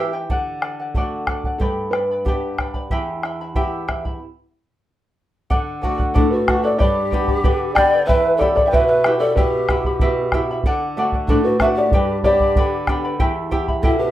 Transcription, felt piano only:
1.58 1.89 A4 medium
1.91 2.53 B4 medium
6.16 6.30 A4 medium
6.30 6.64 B4 medium
6.65 6.77 D5 medium
6.78 7.72 D5 medium
7.75 8.05 G5 loud
8.07 8.37 E5 loud
8.39 8.54 D5 medium
8.56 8.67 D5 medium
8.68 8.72 G5 medium
8.73 8.87 E5 medium
8.89 9.22 E5 medium
9.20 9.37 D5 medium
9.36 10.28 B4 medium
11.29 11.44 A4 medium
11.45 11.59 B4 medium
11.61 11.66 E5 loud
11.78 12.22 D5 medium
12.24 12.84 D5 loud
13.82 13.98 A4 medium
13.99 14.11 B4 medium

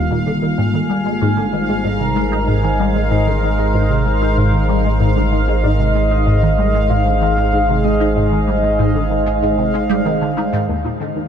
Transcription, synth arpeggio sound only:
0.00 0.10 D#2 medium
0.11 0.18 A#2 medium
0.27 0.42 D3 medium
0.42 0.54 D#3 medium
0.58 0.73 G#2 medium
0.74 0.81 D#3 medium
0.90 1.05 G3 medium
1.06 1.17 G#3 medium
1.22 1.36 G#2 loud
1.37 1.44 D3 medium
1.53 1.65 D#3 medium
1.69 1.84 G#3 medium
1.84 1.96 G#2 medium
2.00 2.12 C3 medium
2.16 2.23 G#3 medium
2.32 2.47 D#4 medium
2.48 2.63 G#2 medium
2.63 2.70 D#3 medium
2.80 2.94 G3 medium
2.96 3.07 G#3 medium
3.11 3.26 G#2 loud
3.27 3.34 D3 medium
3.43 3.54 D#3 medium
3.59 3.73 G#3 medium
3.74 3.86 G#2 medium
3.90 4.01 C3 medium
4.06 4.13 G#3 medium
4.22 4.37 D#4 medium
4.37 4.52 G#2 medium
4.53 4.60 D#3 medium
4.69 4.84 G3 medium
4.85 4.96 G#3 medium
5.00 5.15 G#2 loud
5.16 5.23 D3 medium
5.32 5.43 D#3 medium
5.48 5.63 G#3 medium
5.64 5.75 G#2 medium
5.79 5.91 C3 medium
5.95 6.02 G#3 medium
6.11 6.26 D#4 medium
6.27 6.42 G#2 medium
6.43 6.49 D#3 medium
6.58 6.73 G3 medium
6.74 6.86 G#3 medium
6.90 7.05 G#2 loud
7.06 7.12 D3 medium
7.21 7.33 D#3 medium
7.37 7.52 G#3 medium
7.53 7.64 G#2 medium
7.69 7.80 C3 medium
7.84 7.91 G#3 medium
8.00 8.15 D#4 medium
8.16 8.31 G#2 medium
8.32 8.39 D#3 medium
8.48 8.63 G3 medium
8.63 8.75 G#3 medium
8.79 8.94 G#2 loud
8.95 9.02 D3 medium
9.10 9.22 D#3 medium
9.26 9.42 G#3 medium
9.42 9.54 G#2 medium
9.58 9.70 C3 medium
9.74 9.89 G#3 medium
9.89 10.05 G3 loud
10.05 10.20 D#3 medium
10.21 10.36 D3 medium
10.37 10.49 D#4 medium
10.53 10.68 G#2 loud
10.68 10.84 D#2 medium
10.84 10.91 A#2 medium
11.00 11.15 D3 medium
11.16 11.28 D#3 medium

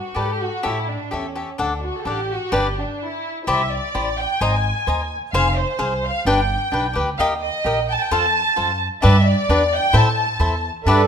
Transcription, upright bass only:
0.16 0.47 G#2 medium
0.65 0.95 A2 medium
1.13 1.43 E2 medium
1.59 1.89 D2 medium
2.05 2.36 A1 medium
2.52 2.83 G1 medium
3.47 3.78 C2 medium
3.95 4.24 A1 medium
4.41 4.70 G#1 medium
4.87 5.16 D#2 medium
5.33 5.63 F1 medium
5.79 6.09 C2 medium
6.25 6.55 G1 medium
6.72 6.93 B1 medium
6.96 7.16 D2 medium
7.19 7.48 D#2 medium
7.65 7.95 A#1 medium
8.11 8.41 F2 medium
8.58 8.87 F#2 medium
9.04 9.33 G2 loud
9.49 9.78 E2 medium
9.93 10.23 A2 medium
10.39 10.70 E2 medium
10.86 11.07 G2 medium

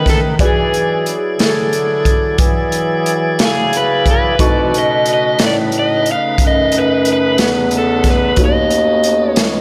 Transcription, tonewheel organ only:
0.00 0.35 C#3 medium
0.00 0.35 A3 medium
0.00 0.35 D#4 medium
0.00 0.36 B4 medium
0.41 4.36 F#3 medium
0.41 4.36 E4 medium
0.41 4.35 G#4 medium
0.41 4.36 D5 medium
4.39 4.73 E3 medium
4.39 4.69 A3 medium
4.39 4.72 C4 medium
4.39 4.73 D5 medium
4.70 8.34 C#3 medium
4.70 8.34 A3 medium
4.70 8.33 D#4 medium
4.70 8.34 B4 medium
8.36 9.61 A3 medium
8.36 9.61 B3 medium
8.36 9.61 C#4 medium
8.36 9.61 D#4 medium

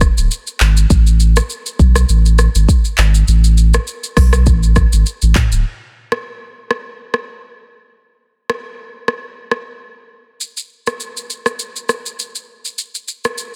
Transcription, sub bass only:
0.00 0.10 E1 loud
0.17 0.29 D1 medium
0.61 0.86 G#1 medium
0.90 1.40 A1 loud
1.79 2.04 B1 medium
2.09 2.48 A1 medium
2.55 2.66 G#1 loud
2.98 3.23 G#1 loud
3.28 3.78 A1 loud
4.17 4.48 B1 medium
4.47 4.85 A1 loud
4.93 5.04 G#1 medium
5.22 5.34 A1 loud
5.52 5.63 D1 medium

